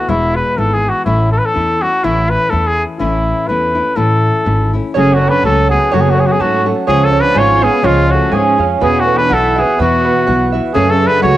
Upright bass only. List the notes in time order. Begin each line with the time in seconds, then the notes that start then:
0.08 E1
0.58 G#1
1.06 A1
1.56 E2
2.04 A1
2.53 E2
3.00 A1
3.49 E2
3.97 A1
4.46 G#1
4.95 F#1
5.43 C#2
5.92 F#1
6.40 G#2
6.87 C#2
7.35 G#1
7.84 C#2
8.32 G#2
8.59 F2
8.82 E2
9.30 B1
9.79 E2
10.28 B1
10.76 F#2
11.23 C#2